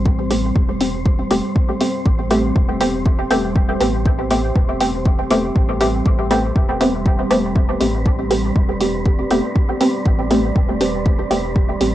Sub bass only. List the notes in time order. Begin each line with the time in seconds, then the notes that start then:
Already playing: A1
0.56 E1
1.31 E1
2.06 A1
2.56 E1
3.31 E1
3.81 A1
4.56 E1
5.31 E1
5.56 A1
6.06 A1
6.56 E1
7.31 E1
7.81 A1
8.56 E1
9.31 E1
10.06 A1
10.56 E1
11.31 E1
11.81 A1